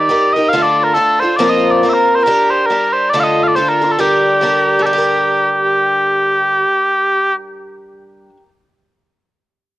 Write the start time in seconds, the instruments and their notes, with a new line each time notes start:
Already playing: twelve-string acoustic guitar D#3
0.00 bagpipes D5
0.09 twelve-string acoustic guitar G3 D#4 G4 A#4
0.33 twelve-string acoustic guitar A#4, bagpipes D#5
0.37 twelve-string acoustic guitar D#4 G4
0.49 twelve-string acoustic guitar D3, bagpipes F5
0.53 twelve-string acoustic guitar A3 D4 F4 A4
0.62 bagpipes D5
0.84 bagpipes A#4
0.94 twelve-string acoustic guitar A3 D4 F4 A4, bagpipes A4
1.20 twelve-string acoustic guitar F4 A4, bagpipes C5
1.25 twelve-string acoustic guitar D4
1.36 twelve-string acoustic guitar F3 A#3 C4 F4, bagpipes D5
1.41 twelve-string acoustic guitar A#4
1.49 bagpipes D#5
1.71 bagpipes D5
1.81 twelve-string acoustic guitar A#3 C4 F4, bagpipes D5
1.85 twelve-string acoustic guitar A#4, bagpipes E5
1.94 bagpipes A#4
2.15 bagpipes C5
2.23 twelve-string acoustic guitar G3 D4, bagpipes A#4
2.28 twelve-string acoustic guitar G4 A#4
2.51 bagpipes C5
2.66 twelve-string acoustic guitar G3, bagpipes A#4
2.70 twelve-string acoustic guitar D4 G4 A#4
2.93 bagpipes C5
3.10 twelve-string acoustic guitar D3 A3, bagpipes D5
3.14 twelve-string acoustic guitar D4 F4 A4
3.20 bagpipes D#5 F5
3.44 bagpipes F5
3.48 bagpipes D5
3.55 twelve-string acoustic guitar A3 D4 F4 A4, bagpipes C5
3.69 bagpipes A#4
3.81 twelve-string acoustic guitar D4 F4 A4
3.91 bagpipes A4
3.99 twelve-string acoustic guitar G3 D4 G4 A#4, bagpipes G4
4.41 twelve-string acoustic guitar G3 D4 G4 A#4
4.79 twelve-string acoustic guitar G3, bagpipes A4
4.85 twelve-string acoustic guitar D4, bagpipes G4
4.93 twelve-string acoustic guitar G4
4.98 twelve-string acoustic guitar A#4